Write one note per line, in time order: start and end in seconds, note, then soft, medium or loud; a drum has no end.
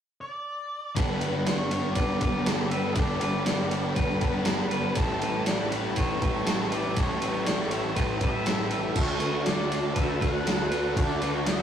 0.21 0.95 D5 medium
0.96 1.19 G1 medium
0.96 1.95 G2 medium
0.96 1.44 D3 medium
0.96 1.22 G3 medium
0.96 1.22 B3 medium
0.96 1.20 D4 loud
0.96 1.20 G4 loud
0.96 1.20 A4 loud
0.96 11.62 A4 medium
0.96 1.45 B4 medium
0.96 4.94 G5 medium
0.96 11.62 A5 medium
0.96 4.93 B5 medium
0.96 kick loud
0.96 ride loud
1.20 1.93 G1 medium
1.20 1.46 G3 medium
1.20 1.47 B3 medium
1.20 1.47 D4 medium
1.20 1.47 G4 medium
1.20 1.75 B4 medium
1.20 ride medium
1.45 1.95 D3 medium
1.45 1.72 G3 medium
1.45 1.71 B3 medium
1.45 1.70 D4 medium
1.45 1.69 G4 medium
1.45 1.91 C#5 medium
1.45 1.72 D5 medium
1.45 snare loud
1.45 ride loud
1.70 1.96 G3 medium
1.70 1.96 B3 medium
1.70 1.97 D4 medium
1.70 2.20 G4 medium
1.70 1.96 C#5 medium
1.70 ride medium
1.92 2.46 G2 medium
1.92 2.72 D5 loud
1.92 ride medium
1.96 2.93 G1 loud
1.96 2.46 D3 medium
1.96 2.23 G3 medium
1.96 2.20 B3 medium
1.96 2.21 D4 medium
1.96 2.22 B4 medium
1.96 kick medium
2.21 2.49 G3 medium
2.21 2.48 B3 medium
2.21 2.49 D4 medium
2.21 2.47 G4 medium
2.21 2.47 B4 medium
2.21 kick medium
2.21 ride medium
2.46 2.96 G2 medium
2.46 2.97 D3 loud
2.46 2.73 G3 loud
2.46 2.72 B3 loud
2.46 2.72 D4 loud
2.46 2.96 G4 loud
2.46 2.75 A4 medium
2.46 snare loud
2.46 ride loud
2.69 2.99 D4 medium
2.69 2.97 B4 medium
2.69 2.96 E5 loud
2.69 ride medium
2.73 2.95 G2 medium
2.73 2.96 D3 medium
2.73 2.97 G3 medium
2.73 2.97 B3 medium
2.92 3.90 D5 medium
2.92 ride loud
2.96 3.19 G1 medium
2.96 3.47 G2 loud
2.96 3.44 D3 loud
2.96 3.24 G3 medium
2.96 3.22 B3 medium
2.96 3.22 D4 loud
2.96 3.20 G4 loud
2.96 3.25 A4 loud
2.96 kick loud
3.20 3.93 G1 medium
3.20 3.46 B3 medium
3.20 3.47 D4 medium
3.20 3.49 G4 medium
3.20 3.46 B4 medium
3.20 ride medium
3.24 3.46 G3 medium
3.46 3.96 D3 medium
3.46 3.73 G3 medium
3.46 3.71 B3 medium
3.46 3.70 D4 medium
3.46 3.69 G4 medium
3.46 3.71 D5 medium
3.46 snare loud
3.46 ride loud
3.69 3.98 G3 medium
3.69 3.98 B3 medium
3.69 3.98 D4 medium
3.69 4.20 G4 medium
3.69 3.95 C#5 medium
3.69 ride medium
3.95 4.93 G1 loud
3.95 4.45 G2 medium
3.95 4.46 D3 loud
3.95 4.22 G3 medium
3.95 4.21 D4 medium
3.95 4.19 B4 loud
3.95 kick medium
3.95 ride medium
3.99 4.20 B3 medium
4.20 4.47 G3 medium
4.20 4.46 B3 medium
4.20 4.48 D4 medium
4.20 4.46 G4 medium
4.20 4.46 B4 medium
4.20 4.99 B4 medium
4.20 kick medium
4.20 ride medium
4.45 4.95 G2 medium
4.45 4.96 D3 loud
4.45 4.73 G3 loud
4.45 4.71 B3 loud
4.45 4.71 D4 loud
4.45 4.98 G4 loud
4.45 4.73 A4 medium
4.45 snare loud
4.45 ride medium
4.70 4.97 G3 medium
4.70 4.96 B3 medium
4.70 4.98 D4 medium
4.70 4.96 B4 medium
4.70 ride medium
4.76 4.97 G2 medium
4.76 4.97 D3 medium
4.95 5.19 A1 medium
4.95 5.50 A2 loud
4.95 5.46 E3 loud
4.95 5.23 G3 medium
4.95 5.21 C#4 medium
4.95 5.21 E4 loud
4.95 5.20 G4 loud
4.95 5.25 A4 loud
4.95 5.49 A4 medium
4.95 8.93 G5 medium
4.95 11.62 E6 medium
4.95 kick loud
4.95 ride loud
5.00 6.74 A3 loud
5.21 5.93 A1 medium
5.21 5.47 G3 medium
5.21 5.47 C#4 medium
5.21 5.49 E4 medium
5.21 5.47 G4 medium
5.21 5.46 B4 medium
5.21 ride medium
5.46 5.97 E3 medium
5.46 5.72 G3 medium
5.46 5.70 C#4 medium
5.46 5.71 E4 medium
5.46 5.68 G4 medium
5.46 5.96 B4 medium
5.46 5.72 D5 medium
5.46 snare loud
5.46 ride loud
5.69 5.97 G3 medium
5.69 5.97 C#4 medium
5.69 5.99 E4 medium
5.69 6.17 G4 medium
5.69 5.96 C#5 medium
5.69 ride medium
5.96 6.93 A1 loud
5.96 6.44 A2 medium
5.96 6.46 E3 medium
5.96 6.22 G3 medium
5.96 6.21 C#4 medium
5.96 6.21 E4 medium
5.96 6.20 B4 medium
5.96 6.74 C#5 loud
5.96 kick medium
5.96 ride medium
6.19 6.46 C#4 medium
6.19 6.47 E4 medium
6.19 6.45 G4 medium
6.19 6.47 B4 medium
6.19 kick medium
6.19 ride medium
6.23 6.46 G3 medium
6.45 6.96 A2 medium
6.45 6.97 E3 medium
6.45 6.72 G3 loud
6.45 6.71 C#4 loud
6.45 6.70 E4 medium
6.45 6.97 G4 loud
6.45 6.72 A4 medium
6.45 snare loud
6.45 ride medium
6.69 6.97 G3 medium
6.69 6.97 C#4 medium
6.69 6.99 E4 medium
6.69 6.96 B4 medium
6.69 ride medium
6.74 6.97 A2 medium
6.74 6.99 E3 medium
6.74 6.99 A3 medium
6.74 6.99 D5 medium
6.95 7.20 A1 medium
6.95 7.47 A2 medium
6.95 7.46 E3 medium
6.95 7.23 G3 medium
6.95 7.22 C#4 loud
6.95 7.19 G4 loud
6.95 7.23 A4 medium
6.95 kick loud
6.95 ride loud
6.99 8.74 A3 loud
6.99 7.21 E4 medium
6.99 7.94 C#5 loud
7.20 7.92 A1 medium
7.20 7.46 G3 medium
7.20 7.47 C#4 medium
7.20 7.48 E4 medium
7.20 7.47 G4 medium
7.20 7.45 B4 medium
7.20 ride medium
7.45 7.96 E3 medium
7.45 7.73 G3 medium
7.45 7.71 C#4 medium
7.45 7.71 E4 medium
7.45 7.67 G4 medium
7.45 7.69 D5 medium
7.45 snare loud
7.45 ride medium
7.68 7.98 E4 medium
7.68 8.17 G4 medium
7.68 7.95 C#5 medium
7.68 ride medium
7.73 7.96 G3 medium
7.73 7.96 C#4 medium
7.95 8.93 A1 medium
7.95 8.46 A2 medium
7.95 8.48 E3 medium
7.95 8.23 G3 medium
7.95 8.22 C#4 medium
7.95 8.22 E4 medium
7.95 8.20 B4 medium
7.95 kick medium
7.95 ride medium
8.18 8.46 G4 medium
8.18 8.46 B4 medium
8.18 kick medium
8.18 ride medium
8.22 8.48 G3 medium
8.22 8.48 C#4 medium
8.22 8.50 E4 medium
8.22 9.00 E5 loud
8.43 8.93 A2 medium
8.43 8.95 G4 loud
8.43 8.71 A4 medium
8.43 snare loud
8.43 ride medium
8.48 8.96 A2 medium
8.48 8.95 E3 medium
8.48 8.71 G3 medium
8.48 8.71 C#4 medium
8.48 8.71 E4 loud
8.68 8.97 E4 medium
8.68 8.95 B4 medium
8.68 ride medium
8.72 8.97 A2 medium
8.72 8.97 E3 medium
8.72 8.96 G3 medium
8.72 8.98 A3 medium
8.72 8.95 C#4 medium
8.93 9.19 D2 medium
8.93 9.46 D3 medium
8.93 9.23 A3 medium
8.93 9.21 A4 medium
8.93 11.62 F#5 medium
8.93 kick loud
8.93 crash loud
8.97 9.22 D4 medium
8.97 9.22 F#4 loud
8.97 9.47 C#5 medium
9.18 9.91 D2 medium
9.18 9.43 B4 medium
9.18 ride medium
9.22 9.47 A3 medium
9.22 9.48 D4 medium
9.22 9.48 F#4 medium
9.43 9.95 D3 medium
9.43 9.69 D5 medium
9.43 9.97 D5 medium
9.43 snare loud
9.43 ride medium
9.48 9.73 A3 medium
9.48 9.72 D4 medium
9.48 9.71 F#4 medium
9.69 9.96 D4 medium
9.69 9.96 F#4 medium
9.69 9.93 C#5 medium
9.69 ride medium
9.73 9.96 A3 medium
9.94 10.92 D2 medium
9.94 10.43 D3 medium
9.94 10.22 A3 medium
9.94 10.21 D4 medium
9.94 10.20 F#4 loud
9.94 10.19 B4 medium
9.94 10.23 E5 loud
9.94 kick medium
9.94 ride loud
10.20 10.45 A3 medium
10.20 10.46 D4 medium
10.20 10.46 F#4 medium
10.20 10.45 B4 medium
10.20 10.99 F#5 loud
10.20 kick medium
10.20 ride medium
10.44 10.94 D3 medium
10.44 10.72 A3 loud
10.44 10.71 D4 medium
10.44 10.70 F#4 medium
10.44 10.71 A4 medium
10.44 snare loud
10.44 ride medium
10.68 10.96 D4 medium
10.68 10.97 F#4 medium
10.68 10.95 B4 medium
10.68 ride medium
10.73 10.95 D3 medium
10.73 10.95 A3 medium
10.95 11.19 D2 medium
10.95 11.43 D3 loud
10.95 11.21 A3 medium
10.95 11.19 D4 loud
10.95 11.18 F#4 loud
10.95 11.20 A4 loud
10.95 11.45 D5 loud
10.95 kick loud
10.95 ride loud
11.20 11.62 D2 medium
11.20 11.44 A3 medium
11.20 11.45 D4 medium
11.20 11.45 F#4 medium
11.20 11.46 B4 medium
11.20 ride medium
11.45 11.62 D3 medium
11.45 11.62 A3 medium
11.45 11.62 D4 medium
11.45 11.62 F#4 medium
11.45 11.62 D5 medium
11.45 11.62 E5 loud
11.45 snare loud
11.45 ride loud